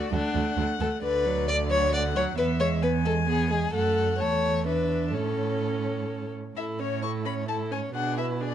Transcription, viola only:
0, 0, Header, 1, 2, 480
1, 0, Start_track
1, 0, Key_signature, 3, "major"
1, 0, Tempo, 451128
1, 1099, Time_signature, 3, 2, 24, 8
1, 3976, Tempo, 471328
1, 6856, Tempo, 460829
1, 8919, End_track
2, 0, Start_track
2, 0, Title_t, "Viola"
2, 0, Program_c, 0, 41
2, 0, Note_on_c, 0, 57, 45
2, 132, Note_off_c, 0, 57, 0
2, 139, Note_on_c, 0, 57, 45
2, 368, Note_off_c, 0, 57, 0
2, 375, Note_on_c, 0, 57, 48
2, 606, Note_off_c, 0, 57, 0
2, 613, Note_on_c, 0, 57, 47
2, 851, Note_off_c, 0, 57, 0
2, 859, Note_on_c, 0, 57, 43
2, 1092, Note_off_c, 0, 57, 0
2, 1098, Note_on_c, 0, 50, 49
2, 1338, Note_on_c, 0, 54, 48
2, 1354, Note_off_c, 0, 50, 0
2, 1574, Note_on_c, 0, 50, 42
2, 1590, Note_off_c, 0, 54, 0
2, 1810, Note_on_c, 0, 54, 46
2, 1826, Note_off_c, 0, 50, 0
2, 2045, Note_off_c, 0, 54, 0
2, 2051, Note_on_c, 0, 50, 44
2, 2293, Note_on_c, 0, 54, 43
2, 2309, Note_off_c, 0, 50, 0
2, 2522, Note_off_c, 0, 54, 0
2, 2528, Note_on_c, 0, 59, 49
2, 2765, Note_on_c, 0, 56, 43
2, 2781, Note_off_c, 0, 59, 0
2, 3013, Note_on_c, 0, 59, 42
2, 3029, Note_off_c, 0, 56, 0
2, 3251, Note_on_c, 0, 56, 46
2, 3267, Note_off_c, 0, 59, 0
2, 3483, Note_off_c, 0, 56, 0
2, 3489, Note_on_c, 0, 59, 48
2, 3731, Note_on_c, 0, 56, 41
2, 3747, Note_off_c, 0, 59, 0
2, 3968, Note_off_c, 0, 56, 0
2, 3975, Note_on_c, 0, 57, 49
2, 4411, Note_off_c, 0, 57, 0
2, 4437, Note_on_c, 0, 57, 43
2, 4914, Note_on_c, 0, 62, 39
2, 4929, Note_off_c, 0, 57, 0
2, 5403, Note_on_c, 0, 61, 39
2, 5418, Note_off_c, 0, 62, 0
2, 6649, Note_off_c, 0, 61, 0
2, 6855, Note_on_c, 0, 64, 38
2, 7099, Note_on_c, 0, 61, 39
2, 7115, Note_off_c, 0, 64, 0
2, 7336, Note_on_c, 0, 64, 33
2, 7351, Note_off_c, 0, 61, 0
2, 7576, Note_on_c, 0, 61, 35
2, 7591, Note_off_c, 0, 64, 0
2, 7808, Note_off_c, 0, 61, 0
2, 7814, Note_on_c, 0, 64, 34
2, 8056, Note_on_c, 0, 61, 37
2, 8072, Note_off_c, 0, 64, 0
2, 8293, Note_off_c, 0, 61, 0
2, 8299, Note_on_c, 0, 62, 38
2, 8540, Note_on_c, 0, 64, 36
2, 8556, Note_off_c, 0, 62, 0
2, 8780, Note_on_c, 0, 62, 33
2, 8796, Note_off_c, 0, 64, 0
2, 8919, Note_off_c, 0, 62, 0
2, 8919, End_track
0, 0, End_of_file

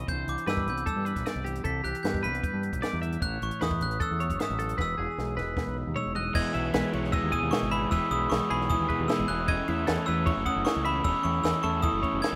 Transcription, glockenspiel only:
0, 0, Header, 1, 2, 480
1, 0, Start_track
1, 0, Key_signature, 4, "major"
1, 0, Tempo, 391901
1, 98, Time_signature, 4, 2, 24, 8
1, 15131, End_track
2, 0, Start_track
2, 0, Title_t, "Glockenspiel"
2, 0, Program_c, 0, 9
2, 107, Note_on_c, 0, 91, 95
2, 350, Note_off_c, 0, 91, 0
2, 357, Note_on_c, 0, 86, 82
2, 595, Note_off_c, 0, 86, 0
2, 607, Note_on_c, 0, 88, 82
2, 817, Note_off_c, 0, 88, 0
2, 854, Note_on_c, 0, 91, 79
2, 1083, Note_off_c, 0, 91, 0
2, 1085, Note_on_c, 0, 88, 70
2, 1296, Note_off_c, 0, 88, 0
2, 2025, Note_on_c, 0, 95, 90
2, 2260, Note_on_c, 0, 90, 82
2, 2270, Note_off_c, 0, 95, 0
2, 2487, Note_on_c, 0, 91, 79
2, 2507, Note_off_c, 0, 90, 0
2, 2716, Note_off_c, 0, 91, 0
2, 2745, Note_on_c, 0, 95, 78
2, 2987, Note_on_c, 0, 91, 75
2, 2989, Note_off_c, 0, 95, 0
2, 3093, Note_off_c, 0, 91, 0
2, 3948, Note_on_c, 0, 90, 97
2, 4168, Note_off_c, 0, 90, 0
2, 4202, Note_on_c, 0, 85, 80
2, 4305, Note_off_c, 0, 85, 0
2, 4440, Note_on_c, 0, 87, 89
2, 4678, Note_off_c, 0, 87, 0
2, 4685, Note_on_c, 0, 90, 89
2, 4788, Note_off_c, 0, 90, 0
2, 4925, Note_on_c, 0, 88, 88
2, 5407, Note_off_c, 0, 88, 0
2, 5415, Note_on_c, 0, 87, 74
2, 5892, Note_off_c, 0, 87, 0
2, 5900, Note_on_c, 0, 88, 82
2, 7272, Note_off_c, 0, 88, 0
2, 7312, Note_on_c, 0, 88, 74
2, 7545, Note_on_c, 0, 90, 79
2, 7554, Note_off_c, 0, 88, 0
2, 7652, Note_off_c, 0, 90, 0
2, 7777, Note_on_c, 0, 92, 99
2, 8727, Note_on_c, 0, 88, 88
2, 8767, Note_off_c, 0, 92, 0
2, 8956, Note_off_c, 0, 88, 0
2, 8969, Note_on_c, 0, 87, 83
2, 9198, Note_on_c, 0, 85, 84
2, 9221, Note_off_c, 0, 87, 0
2, 9449, Note_on_c, 0, 83, 87
2, 9456, Note_off_c, 0, 85, 0
2, 9690, Note_on_c, 0, 88, 102
2, 9701, Note_off_c, 0, 83, 0
2, 9917, Note_off_c, 0, 88, 0
2, 9935, Note_on_c, 0, 87, 94
2, 10162, Note_on_c, 0, 85, 86
2, 10184, Note_off_c, 0, 87, 0
2, 10392, Note_off_c, 0, 85, 0
2, 10419, Note_on_c, 0, 83, 79
2, 10642, Note_off_c, 0, 83, 0
2, 10651, Note_on_c, 0, 87, 93
2, 11123, Note_on_c, 0, 88, 84
2, 11148, Note_off_c, 0, 87, 0
2, 11353, Note_off_c, 0, 88, 0
2, 11367, Note_on_c, 0, 90, 101
2, 11612, Note_on_c, 0, 92, 110
2, 11619, Note_off_c, 0, 90, 0
2, 12285, Note_off_c, 0, 92, 0
2, 12323, Note_on_c, 0, 88, 90
2, 12812, Note_on_c, 0, 87, 98
2, 12824, Note_off_c, 0, 88, 0
2, 13041, Note_on_c, 0, 85, 90
2, 13061, Note_off_c, 0, 87, 0
2, 13294, Note_on_c, 0, 83, 92
2, 13296, Note_off_c, 0, 85, 0
2, 13527, Note_on_c, 0, 88, 105
2, 13542, Note_off_c, 0, 83, 0
2, 13760, Note_on_c, 0, 85, 83
2, 13779, Note_off_c, 0, 88, 0
2, 14005, Note_on_c, 0, 88, 93
2, 14015, Note_off_c, 0, 85, 0
2, 14115, Note_off_c, 0, 88, 0
2, 14244, Note_on_c, 0, 85, 87
2, 14483, Note_on_c, 0, 87, 100
2, 14497, Note_off_c, 0, 85, 0
2, 14968, Note_on_c, 0, 92, 92
2, 14983, Note_off_c, 0, 87, 0
2, 15131, Note_off_c, 0, 92, 0
2, 15131, End_track
0, 0, End_of_file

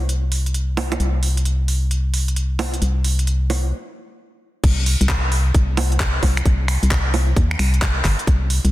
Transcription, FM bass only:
0, 0, Header, 1, 2, 480
1, 0, Start_track
1, 0, Key_signature, -3, "minor"
1, 0, Tempo, 454545
1, 1057, Time_signature, 4, 2, 24, 8
1, 9205, End_track
2, 0, Start_track
2, 0, Title_t, "FM bass"
2, 0, Program_c, 0, 39
2, 0, Note_on_c, 0, 36, 88
2, 1039, Note_off_c, 0, 36, 0
2, 1055, Note_on_c, 0, 36, 86
2, 2959, Note_off_c, 0, 36, 0
2, 2975, Note_on_c, 0, 36, 89
2, 3936, Note_off_c, 0, 36, 0
2, 4895, Note_on_c, 0, 36, 97
2, 5235, Note_off_c, 0, 36, 0
2, 5289, Note_on_c, 0, 36, 101
2, 5826, Note_off_c, 0, 36, 0
2, 5856, Note_on_c, 0, 36, 92
2, 6546, Note_off_c, 0, 36, 0
2, 6576, Note_on_c, 0, 36, 85
2, 6778, Note_off_c, 0, 36, 0
2, 6816, Note_on_c, 0, 36, 103
2, 7156, Note_off_c, 0, 36, 0
2, 7210, Note_on_c, 0, 36, 102
2, 7746, Note_off_c, 0, 36, 0
2, 7777, Note_on_c, 0, 39, 82
2, 7979, Note_off_c, 0, 39, 0
2, 8017, Note_on_c, 0, 36, 87
2, 8466, Note_off_c, 0, 36, 0
2, 8497, Note_on_c, 0, 31, 102
2, 8617, Note_off_c, 0, 31, 0
2, 8737, Note_on_c, 0, 36, 102
2, 9076, Note_off_c, 0, 36, 0
2, 9130, Note_on_c, 0, 36, 95
2, 9205, Note_off_c, 0, 36, 0
2, 9205, End_track
0, 0, End_of_file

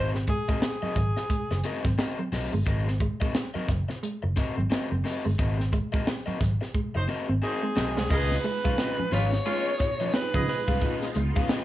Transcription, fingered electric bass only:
0, 0, Header, 1, 3, 480
1, 0, Start_track
1, 0, Tempo, 679502
1, 1883, Time_signature, 4, 2, 24, 8
1, 8225, End_track
2, 0, Start_track
2, 0, Title_t, "Fingered electric bass"
2, 0, Program_c, 0, 33
2, 0, Note_on_c, 0, 32, 102
2, 239, Note_off_c, 0, 32, 0
2, 677, Note_on_c, 0, 32, 80
2, 783, Note_off_c, 0, 32, 0
2, 1064, Note_on_c, 0, 30, 81
2, 1135, Note_off_c, 0, 30, 0
2, 1305, Note_on_c, 0, 32, 75
2, 1375, Note_off_c, 0, 32, 0
2, 1641, Note_on_c, 0, 35, 81
2, 1747, Note_off_c, 0, 35, 0
2, 1788, Note_on_c, 0, 31, 70
2, 1857, Note_off_c, 0, 31, 0
2, 1883, Note_on_c, 0, 32, 118
2, 2163, Note_off_c, 0, 32, 0
2, 2604, Note_on_c, 0, 30, 86
2, 2709, Note_off_c, 0, 30, 0
2, 2991, Note_on_c, 0, 30, 81
2, 3060, Note_off_c, 0, 30, 0
2, 3233, Note_on_c, 0, 32, 82
2, 3301, Note_off_c, 0, 32, 0
2, 3473, Note_on_c, 0, 30, 92
2, 3541, Note_off_c, 0, 30, 0
2, 3714, Note_on_c, 0, 31, 81
2, 3782, Note_off_c, 0, 31, 0
2, 3807, Note_on_c, 0, 32, 112
2, 4086, Note_off_c, 0, 32, 0
2, 4526, Note_on_c, 0, 32, 88
2, 4631, Note_off_c, 0, 32, 0
2, 4912, Note_on_c, 0, 30, 82
2, 4981, Note_off_c, 0, 30, 0
2, 5151, Note_on_c, 0, 32, 85
2, 5221, Note_off_c, 0, 32, 0
2, 5489, Note_on_c, 0, 35, 90
2, 5631, Note_off_c, 0, 35, 0
2, 5631, Note_on_c, 0, 36, 75
2, 5700, Note_off_c, 0, 36, 0
2, 5725, Note_on_c, 0, 37, 119
2, 5900, Note_off_c, 0, 37, 0
2, 6110, Note_on_c, 0, 35, 90
2, 6180, Note_off_c, 0, 35, 0
2, 6442, Note_on_c, 0, 32, 101
2, 6617, Note_off_c, 0, 32, 0
2, 7307, Note_on_c, 0, 49, 107
2, 7377, Note_off_c, 0, 49, 0
2, 7544, Note_on_c, 0, 36, 92
2, 7615, Note_off_c, 0, 36, 0
2, 7882, Note_on_c, 0, 37, 91
2, 7987, Note_off_c, 0, 37, 0
2, 8225, End_track
3, 0, Start_track
3, 0, Title_t, "Muted fingered electric bass strokes"
3, 584, Note_on_c, 9, 29, 43
3, 655, Note_off_c, 9, 29, 0
3, 2508, Note_on_c, 9, 29, 48
3, 2579, Note_off_c, 9, 29, 0
3, 4431, Note_on_c, 9, 29, 47
3, 4502, Note_off_c, 9, 29, 0
3, 6350, Note_on_c, 9, 29, 48
3, 6420, Note_off_c, 9, 29, 0
3, 8225, End_track
0, 0, End_of_file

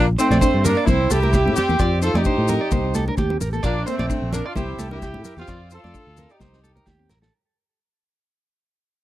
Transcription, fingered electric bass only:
0, 0, Header, 1, 2, 480
1, 0, Start_track
1, 0, Tempo, 461184
1, 1869, Time_signature, 4, 2, 24, 8
1, 9399, End_track
2, 0, Start_track
2, 0, Title_t, "Fingered electric bass"
2, 0, Program_c, 0, 33
2, 0, Note_on_c, 0, 34, 91
2, 155, Note_off_c, 0, 34, 0
2, 317, Note_on_c, 0, 34, 75
2, 411, Note_off_c, 0, 34, 0
2, 563, Note_on_c, 0, 43, 71
2, 760, Note_off_c, 0, 43, 0
2, 912, Note_on_c, 0, 36, 104
2, 1109, Note_off_c, 0, 36, 0
2, 1150, Note_on_c, 0, 36, 79
2, 1515, Note_on_c, 0, 45, 75
2, 1531, Note_off_c, 0, 36, 0
2, 1608, Note_off_c, 0, 45, 0
2, 1760, Note_on_c, 0, 40, 72
2, 1851, Note_off_c, 0, 40, 0
2, 1869, Note_on_c, 0, 41, 88
2, 2172, Note_off_c, 0, 41, 0
2, 2226, Note_on_c, 0, 41, 82
2, 2322, Note_off_c, 0, 41, 0
2, 2479, Note_on_c, 0, 45, 94
2, 2675, Note_off_c, 0, 45, 0
2, 2832, Note_on_c, 0, 36, 98
2, 3224, Note_off_c, 0, 36, 0
2, 3305, Note_on_c, 0, 39, 76
2, 3502, Note_off_c, 0, 39, 0
2, 3550, Note_on_c, 0, 33, 74
2, 3745, Note_off_c, 0, 33, 0
2, 3788, Note_on_c, 0, 34, 81
2, 3983, Note_off_c, 0, 34, 0
2, 4154, Note_on_c, 0, 34, 74
2, 4245, Note_off_c, 0, 34, 0
2, 4393, Note_on_c, 0, 34, 75
2, 4590, Note_off_c, 0, 34, 0
2, 4749, Note_on_c, 0, 36, 101
2, 4944, Note_off_c, 0, 36, 0
2, 4966, Note_on_c, 0, 36, 72
2, 5341, Note_on_c, 0, 45, 68
2, 5357, Note_off_c, 0, 36, 0
2, 5437, Note_off_c, 0, 45, 0
2, 5586, Note_on_c, 0, 40, 69
2, 5680, Note_off_c, 0, 40, 0
2, 5701, Note_on_c, 0, 41, 86
2, 6006, Note_off_c, 0, 41, 0
2, 6079, Note_on_c, 0, 41, 69
2, 6168, Note_off_c, 0, 41, 0
2, 6317, Note_on_c, 0, 38, 84
2, 6513, Note_off_c, 0, 38, 0
2, 6672, Note_on_c, 0, 36, 98
2, 7066, Note_off_c, 0, 36, 0
2, 7152, Note_on_c, 0, 39, 73
2, 7348, Note_off_c, 0, 39, 0
2, 7387, Note_on_c, 0, 33, 70
2, 7586, Note_off_c, 0, 33, 0
2, 9399, End_track
0, 0, End_of_file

